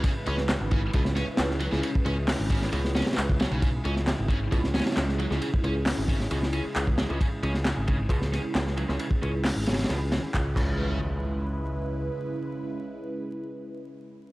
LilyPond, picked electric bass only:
\new Staff \with { instrumentName = "Picked electric bass" } { \clef bass \time 4/4 \key cis \minor \tempo 4 = 134 r8 cis,8. gis,,8. cis,8. r16 cis,8. cis,16 | r8 cis,8. gis,,8. cis,8. r16 cis,8. b,,16~ | b,,8 cis,8. gis,,8. cis,8. r16 cis,8. cis,16 | r8 cis,8. gis,,8. cis,8. r16 cis,8. cis,16 |
r8 cis,8. gis,,8. cis,8. r16 cis,8. cis,16 | r8 cis,8. gis,,8. cis,8. r16 cis,8 cis,8~ | cis,2. r4 | r1 | }